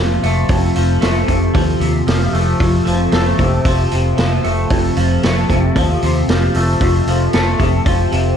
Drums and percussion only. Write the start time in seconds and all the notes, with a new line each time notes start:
0.23 open hi-hat
0.49 kick, open hi-hat
0.75 open hi-hat
1.02 snare, open hi-hat
1.28 kick, open hi-hat
1.55 kick, open hi-hat
1.81 open hi-hat
2.08 snare, open hi-hat
2.35 open hi-hat
2.60 kick, open hi-hat
2.87 open hi-hat
3.12 snare, open hi-hat
3.39 kick, open hi-hat
3.65 kick, open hi-hat
3.91 open hi-hat
4.18 snare, open hi-hat
4.44 open hi-hat
4.70 kick, open hi-hat
4.96 open hi-hat
5.23 snare, open hi-hat
5.50 kick, open hi-hat
5.76 kick, open hi-hat
6.02 open hi-hat
6.29 snare, open hi-hat
6.54 open hi-hat
6.81 kick, open hi-hat
7.07 open hi-hat
7.33 snare, open hi-hat
7.60 kick, open hi-hat
7.86 kick, open hi-hat
8.12 open hi-hat